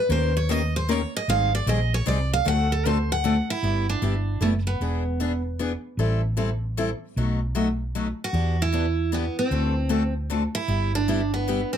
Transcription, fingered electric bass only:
0.09 1.03 D#2 medium
1.28 1.59 G#1 medium
1.66 2.00 A#1 loud
2.07 2.40 C2 medium
2.45 3.39 D2 medium
3.62 3.94 G1 medium
4.01 4.35 G1 medium
4.40 4.74 F#1 medium
4.80 5.74 E1 medium
5.97 6.92 A1 medium
7.16 8.11 B1 medium
8.33 9.28 E2 medium
9.50 10.45 D2 medium
10.68 11.63 G1 medium

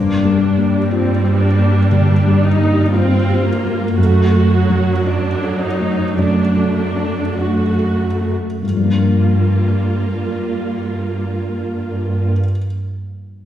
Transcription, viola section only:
0.00 0.37 A#3 soft
0.00 0.87 D4 soft
0.41 2.94 G3 soft
0.91 1.41 C4 soft
1.41 1.90 D4 soft
1.92 2.41 D4 soft
2.43 2.94 D#4 medium
2.93 3.45 C4 medium
2.93 3.96 F4 soft
3.45 3.98 A#3 soft
3.97 4.50 A3 soft
3.97 5.03 F#4 soft
4.52 5.05 F#3 soft
5.06 6.18 F#3 soft
5.06 5.61 D4 soft
5.62 6.18 D#4 soft
6.18 7.37 A3 soft
6.18 6.75 D4 soft
6.76 7.36 D4 soft
7.38 8.36 A3 soft
7.38 8.38 F#4 soft
8.62 12.29 A#3 soft
8.62 12.30 F4 soft

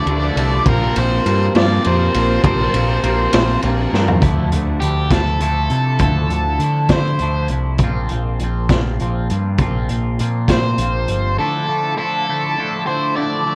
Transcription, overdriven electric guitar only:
0.00 0.68 D5 loud
0.69 0.98 A#4 medium
0.98 1.52 C5 loud
1.57 1.86 D5 loud
1.88 2.41 C5 loud
2.46 3.60 C5 medium
4.80 5.08 G4 medium
5.12 5.39 A4 medium
5.42 6.92 A4 medium
6.92 7.47 C5 medium
10.50 11.38 C5 loud
11.39 11.94 A4 loud
11.98 12.83 A4 loud
12.87 13.14 C5 medium
13.16 13.55 D5 loud

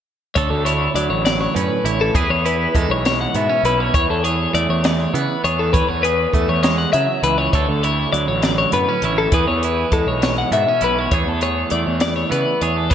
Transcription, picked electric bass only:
0.36 0.48 D2 loud
0.50 0.87 D2 medium
0.95 1.07 D2 medium
1.10 1.47 A1 medium
1.56 1.67 F#2 medium
1.84 2.09 A1 medium
2.14 2.27 E2 loud
2.29 2.66 E2 medium
2.75 2.87 E2 medium
2.89 3.26 B1 medium
3.35 3.47 G#2 medium
3.63 3.88 B1 medium
3.94 4.06 E2 medium
4.09 4.46 E2 medium
4.54 4.66 E2 medium
4.69 5.06 E2 medium
5.14 5.26 C#3 medium
5.44 5.81 E2 medium
5.89 6.26 E2 medium
6.34 6.46 E2 medium
6.48 6.85 E2 medium
6.94 7.06 C#3 medium
7.23 7.47 C#2 medium
7.53 7.65 D2 medium
7.68 8.05 D2 medium
8.13 8.25 D2 medium
8.28 8.64 A1 medium
8.73 8.85 F#2 medium
9.02 9.27 A1 medium
9.32 9.44 E2 medium
9.47 9.84 E2 medium
9.92 10.04 E2 medium
10.06 10.43 B1 medium
10.51 10.64 G#2 medium
10.82 11.06 B1 medium
11.12 11.24 E2 medium
11.26 11.63 E2 medium
11.72 11.84 E2 medium
11.87 12.23 E2 medium
12.32 12.44 C#3 medium
12.62 12.94 E2 medium

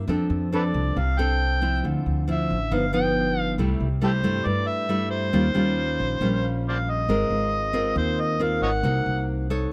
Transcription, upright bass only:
0.08 0.28 F2 medium
0.30 0.71 F2 medium
0.74 0.94 C2 medium
0.97 1.80 C2 medium
1.84 2.04 D2 medium
2.06 2.46 D2 medium
2.50 2.70 A1 medium
2.72 3.55 G1 medium
3.58 3.79 C2 medium
3.80 4.21 C2 medium
4.23 4.44 G2 medium
4.46 5.30 G2 medium
5.33 5.54 D#2 medium
5.55 5.96 D#2 medium
6.00 6.20 A#1 medium
6.21 7.05 A#1 loud
7.08 7.29 G#1 medium
7.30 7.92 G#1 medium
7.96 8.58 D#2 medium
8.62 8.82 G#1 medium
8.83 9.04 C2 medium
9.06 9.68 C2 medium

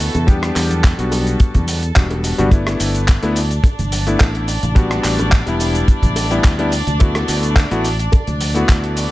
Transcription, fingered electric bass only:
0.15 0.50 E2 loud
0.56 0.92 E2 loud
0.99 1.34 B1 loud
1.55 1.90 E2 loud
1.97 2.32 E1 loud
2.39 2.74 G1 loud
2.80 3.16 G1 loud
3.23 3.58 D2 loud
3.79 4.14 G1 loud
4.21 4.57 A1 medium
4.63 4.98 A1 loud
5.04 5.41 A1 loud
5.47 5.83 E1 loud
6.03 6.38 A1 loud
6.45 6.81 D2 medium
6.87 7.23 D2 loud
7.29 7.65 D2 loud
7.71 8.07 A1 loud
8.28 8.63 D2 loud
8.69 9.05 D2 medium

